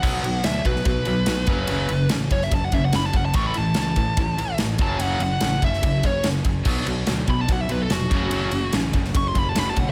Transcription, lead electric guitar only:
X:1
M:4/4
L:1/16
Q:1/4=145
K:F#m
V:1 name="Lead electric guitar"
f4 e2 B2 B8- | B4 z2 c e a f e f b a f a | c' b a2 a8 z2 a2 | f2 f4 e4 c2 z4 |
z6 b a f e B A F4- | F4 z4 c' ^b =b a b a f z |]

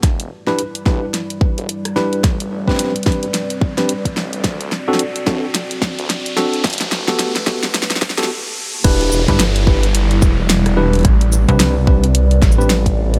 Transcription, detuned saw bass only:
X:1
M:4/4
L:1/16
Q:"Swing 16ths" 1/4=109
K:Em
V:1 name="Detuned saw bass" clef=bass
E,,,2 z4 B,,, z4 E,,, z4 | A,,,2 A,,,3 z2 A,,, z6 A,,,2 | D,,2 z4 A,,, z4 D,, z4 | G,,,2 G,,,3 z2 G,,, z8 |
E,,,2 E,,, z G,,,6 E,,,6 | A,,,3 z C,,6 A,,,6 |]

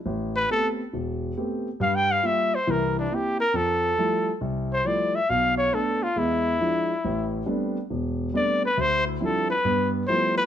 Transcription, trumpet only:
X:1
M:4/4
L:1/8
Q:"Swing" 1/4=138
K:Am
V:1 name="Trumpet"
z B A z4 z | (3f g f e c _B D G B | A4 z c d e | f ^c A F E4- |
E2 z4 d B | c E A B2 z c B |]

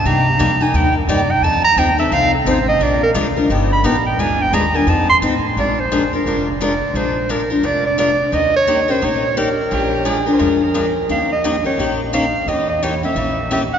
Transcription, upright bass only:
X:1
M:4/4
L:1/8
Q:"Swing" 1/4=174
K:Bbmix
V:1 name="Upright bass" clef=bass
C,2 F,,2 E,,2 _G,,2 | F,,2 E,,2 C,,2 =A,,,2 | B,,,2 D,,2 G,,,2 ^A,,,2 | D,,2 E,,2 F,,2 =A,,2 |
B,,,4 F,,,4 | B,,,4 F,,,4 | E,,4 B,,,4 | B,,,4 F,,4 |
E,,4 B,,,4 | =E,,4 B,,,4 |]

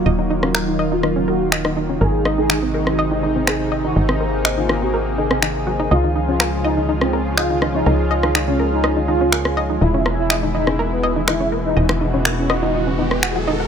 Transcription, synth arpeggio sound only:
X:1
M:4/4
L:1/16
Q:1/4=123
K:Abmix
V:1 name="Synth arpeggio sound"
e E E D B z e E E D B z e E E D | B z e E E C B z e E E C B z e E | E C B z e E E C B z E C E z G E | e E E D B z e E E D B z e E E D |
B z e E E D B z e E E D B z e E | E D B z e E E D B z e E E D B z | e E E D B z e E E D E z g G E g |]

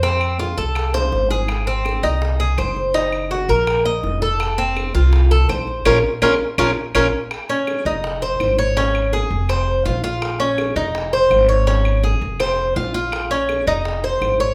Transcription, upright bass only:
X:1
M:4/4
L:1/8
Q:1/4=165
K:Fphr
V:1 name="Upright bass" clef=bass
F,,3 C,,3 A,,,2- | A,,,3 C,,3 G,,,2- | G,,,3 B,,,3 F,,,2- | F,,,3 C,,3 B,,,2 |
B,,, z B,,, z B,,, z B,,, z | z3 F,,,3 A,,,2- | A,,,3 F,,,3 B,,,2- | B,,,3 F,,,3 A,,,2- |
A,,,3 F,,,3 B,,,2- | B,,,3 F,,,3 A,,,2 |]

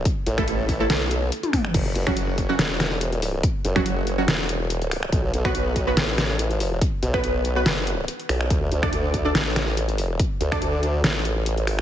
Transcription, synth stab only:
X:1
M:4/4
L:1/16
Q:"Swing 16ths" 1/4=142
K:F#m
V:1 name="Synth stab"
z3 [A,EA] z3 [A,EA] z8 | z3 [F,CF] z3 [F,CF] z8 | z3 [F,CF] z3 [F,CF] z8 | z3 [B,FB] z3 [B,FB] z8 |
z3 [B,FB] z3 [B,FB] z8 | z3 [DAd] z3 [DAd] z8 | z3 [DAd] z12 |]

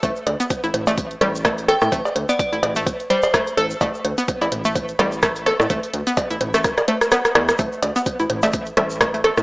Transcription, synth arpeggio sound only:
X:1
M:4/4
L:1/16
Q:"Swing 16ths" 1/4=127
K:Clyd
V:1 name="Synth arpeggio sound"
A, z2 B, z E z A, z2 G, z A, z A z | A, z2 B, z E z A, z2 G, z A, z A z | A, z2 B, z E z A, z2 G, z A, z A z | A, z2 B, z E z A, z2 A, z B, z A, z |
A, z2 B, z E z A, z2 G, z A, A, A z |]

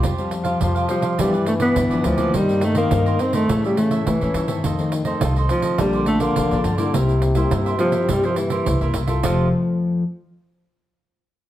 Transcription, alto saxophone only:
X:1
M:4/4
L:1/16
Q:1/4=104
K:F
V:1 name="Alto saxophone" clef=bass
z6 F,2 G,2 A, =B,3 F,2 | G,2 A, B,3 C A,2 G, A,2 E,3 z | z6 F,2 G,2 A, B,3 z2 | z6 F,2 G, F, E,4 z2 |
F,2 z12 z2 |]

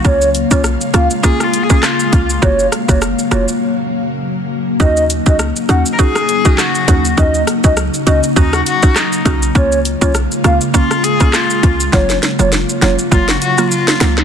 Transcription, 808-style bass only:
X:1
M:4/4
L:1/16
Q:"Swing 16ths" 1/4=101
K:Ebm
V:1 name="808-style bass" clef=bass
D,,3 C,,2 z D,, z6 z D,,2 | G,,,2 z F,,,2 z F,,, z8 z | E,,3 D,,2 z E,, z6 z E,,2 | E,,2 z D,,2 z D,, z E,,2 z4 C,,2 |
D,,3 C,,2 z D,, z6 z D,,2 | G,,,2 z F,,,2 z F,,, z G,,,2 z4 D,,2 |]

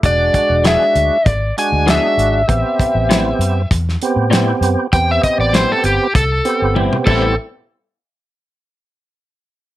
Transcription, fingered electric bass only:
X:1
M:4/4
L:1/16
Q:"Swing 16ths" 1/4=98
K:Ador
V:1 name="Fingered electric bass" clef=bass
E,,,2 z E,,,2 z D,, z ^G,,,2 z D,,2 z G,,,2 | A,,, z2 A,,,3 F,,2 E,,2 z A,,3 F,, z | E,,2 z A,,,2 z G,,, z C,,2 z G,,,2 z A,,,2 | z16 |]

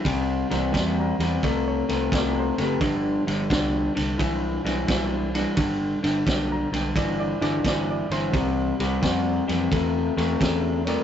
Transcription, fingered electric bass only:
X:1
M:4/4
L:1/8
Q:"Swing" 1/4=87
K:Gmix
V:1 name="Fingered electric bass" clef=bass
C,, C,, E,, E,, C,, C,, C,, ^F,,, | G,,, G,,, C,, C,, B,,, B,,, B,,,2 | G,,, G,,, B,,, B,,, G,,, G,,, G,,, G,,, | C,, C,, F,, F,, E,, E,, E,,2 |]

